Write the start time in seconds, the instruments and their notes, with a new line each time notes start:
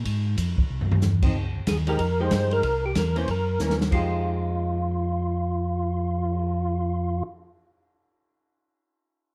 0.05 tonewheel organ G#2, kick, ride
0.38 tonewheel organ F2, kick, hi-hat pedal, ride
0.58 tonewheel organ F2, kick
0.70 tonewheel organ C2
0.81 floor tom
0.90 tonewheel organ C2, floor tom
1.02 tonewheel organ E2, snare, hi-hat pedal
1.22 hollow-body jazz guitar F3 C4 D#4, kick, crash
1.35 tonewheel organ C#2, kick
1.55 tonewheel organ C#2
1.67 tonewheel organ D#2 G#4, kick, snare, hi-hat pedal, ride
1.87 hollow-body jazz guitar F3 G#3 D#4 G4, tonewheel organ A#4, ride
1.99 tonewheel organ F2, kick, ride
2.20 hollow-body jazz guitar F3 G#3 D#4 G4, tonewheel organ C5
2.31 tonewheel organ G2, kick, snare, hi-hat pedal, ride
2.51 tonewheel organ A#4, ride
2.63 tonewheel organ C2, kick, ride
2.86 tonewheel organ G4
2.95 tonewheel organ E2 A#4, kick, snare, hi-hat pedal, ride
3.16 hollow-body jazz guitar E3 A#3 C#4, tonewheel organ C5, ride
3.28 tonewheel organ F#2 A#4, kick, ride
3.59 tonewheel organ D#2, hollow-body jazz guitar E3 A#3 C#4, snare, hi-hat pedal
3.70 snare
3.81 snare
3.91 tonewheel organ F2 F4, hollow-body jazz guitar F3 G#3 D#4 G4, kick, crash
4.12 cymbal swell